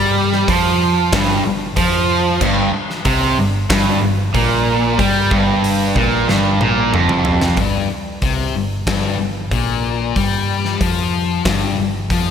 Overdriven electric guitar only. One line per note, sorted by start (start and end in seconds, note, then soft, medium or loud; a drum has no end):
0.00 0.47 G3 loud
0.49 1.12 F3 medium
1.13 1.44 G2 loud
1.45 1.71 G2 medium
1.77 2.41 F3 loud
2.42 2.73 G2 medium
2.74 muted overdriven electric guitar stroke medium
3.06 3.37 C3 loud
3.38 3.64 G2 medium
3.70 4.01 G2 loud
4.03 4.29 G2 medium
4.34 4.98 A#2 medium
4.99 5.30 G3 loud
5.31 5.95 G2 loud
5.95 6.27 A#2 loud
6.28 6.59 G2 loud
6.60 6.92 A#2 loud
6.93 7.57 F2 loud